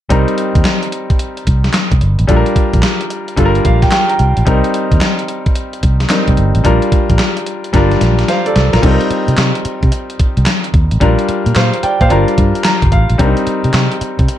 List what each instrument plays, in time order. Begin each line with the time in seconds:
0.09 fingered electric bass C2, grand piano G3 C4 D#4 A#4, kick, closed hi-hat
0.28 closed hi-hat
0.38 closed hi-hat
0.55 fingered electric bass D#2, kick, closed hi-hat
0.65 snare, clap, closed hi-hat
0.83 closed hi-hat
0.92 closed hi-hat
1.10 kick, closed hi-hat
1.19 closed hi-hat
1.37 closed hi-hat
1.47 fingered electric bass C2, kick, closed hi-hat
1.64 snare, closed hi-hat
1.73 snare, clap, closed hi-hat
1.91 fingered electric bass C2, kick, closed hi-hat
2.01 fingered electric bass G1, closed hi-hat
2.19 fingered electric bass A1, closed hi-hat
2.27 fingered electric bass A#1, grand piano G3 D4 F4 A4, kick, closed hi-hat
2.36 grand piano A#4
2.46 closed hi-hat
2.56 kick, closed hi-hat
2.73 fingered electric bass A#1, kick, closed hi-hat
2.83 snare, clap, closed hi-hat
3.01 closed hi-hat
3.10 closed hi-hat
3.28 closed hi-hat
3.36 fingered electric bass G1, grand piano G3 D4 F4 A4, kick, closed hi-hat
3.45 grand piano A#4
3.55 closed hi-hat
3.65 fingered electric bass A#1, grand piano F5, kick, closed hi-hat
3.82 grand piano G5, kick, snare, closed hi-hat
3.91 grand piano G5, snare, clap, closed hi-hat
4.09 grand piano A#5, closed hi-hat
4.19 fingered electric bass C2, closed hi-hat
4.37 fingered electric bass A#1, closed hi-hat
4.45 fingered electric bass C2, grand piano G3 C4 D#4 A#4, kick, closed hi-hat
4.64 closed hi-hat
4.74 closed hi-hat
4.92 fingered electric bass D#2, kick, closed hi-hat
5.01 snare, clap, closed hi-hat
5.19 closed hi-hat
5.28 closed hi-hat
5.46 kick, closed hi-hat
5.55 closed hi-hat
5.73 closed hi-hat
5.83 fingered electric bass C2, kick, closed hi-hat
6.00 snare, closed hi-hat
6.09 grand piano G3 C4 D#4 A#4, snare, clap, closed hi-hat
6.28 fingered electric bass C2, kick, closed hi-hat
6.37 fingered electric bass G1, closed hi-hat
6.55 fingered electric bass A1, closed hi-hat
6.64 fingered electric bass A#1, grand piano G3 D4 F4 A#4, kick, closed hi-hat
6.82 closed hi-hat
6.92 kick, closed hi-hat
7.10 fingered electric bass A#1, kick, closed hi-hat
7.19 snare, clap, closed hi-hat
7.37 closed hi-hat
7.46 closed hi-hat
7.64 closed hi-hat
7.73 fingered electric bass G1, grand piano G3 D4 F4 A#4, kick, snare, closed hi-hat
7.91 snare, closed hi-hat
8.01 fingered electric bass A#1, snare, closed hi-hat
8.19 snare, closed hi-hat
8.28 grand piano C5 F5, snare, closed hi-hat
8.46 grand piano A4 D5, closed hi-hat
8.56 fingered electric bass C2, snare, closed hi-hat
8.73 fingered electric bass A#1, grand piano F4 A#4, snare, closed hi-hat
8.82 fingered electric bass C2, grand piano G3 C4 D#4 A4, kick, closed hi-hat, crash
8.91 grand piano A#4
9.01 closed hi-hat
9.10 muted fingered electric bass stroke, closed hi-hat
9.28 fingered electric bass C3, closed hi-hat
9.37 fingered electric bass C3, snare, clap, closed hi-hat
9.55 closed hi-hat
9.65 muted fingered electric bass stroke, closed hi-hat
9.83 fingered electric bass C3, kick, closed hi-hat
9.92 closed hi-hat
10.10 closed hi-hat
10.19 muted fingered electric bass stroke, kick, closed hi-hat
10.37 fingered electric bass C2, closed hi-hat
10.46 snare, clap, closed hi-hat
10.64 closed hi-hat
10.74 fingered electric bass D#2, kick, closed hi-hat
10.91 fingered electric bass A1, closed hi-hat
11.00 fingered electric bass A#1, grand piano G3 D4 F4 A#4, kick, closed hi-hat
11.19 closed hi-hat
11.29 muted fingered electric bass stroke, closed hi-hat
11.46 fingered electric bass A#2, closed hi-hat
11.55 fingered electric bass A#2, grand piano C5 F5, snare, clap, closed hi-hat
11.73 closed hi-hat
11.83 grand piano D5 G5, muted fingered electric bass stroke, closed hi-hat
12.01 fingered electric bass A#2, grand piano C5 F5, kick, closed hi-hat
12.09 fingered electric bass G1, grand piano G3 D4 F4 A#4, closed hi-hat
12.28 closed hi-hat
12.38 fingered electric bass G2, kick, closed hi-hat
12.55 closed hi-hat
12.64 grand piano A#5, snare, clap, closed hi-hat
12.82 fingered electric bass G1, kick, closed hi-hat
12.92 fingered electric bass A1, grand piano F5, kick, closed hi-hat
13.10 fingered electric bass A#1, closed hi-hat
13.18 fingered electric bass C2, grand piano G3 C4 D4 A#4, kick, closed hi-hat
13.26 grand piano D#4
13.37 closed hi-hat
13.47 muted fingered electric bass stroke, closed hi-hat
13.64 fingered electric bass C3, closed hi-hat
13.73 fingered electric bass C3, snare, clap, closed hi-hat
13.92 closed hi-hat
14.01 muted fingered electric bass stroke, closed hi-hat
14.19 fingered electric bass C3, kick, closed hi-hat
14.28 closed hi-hat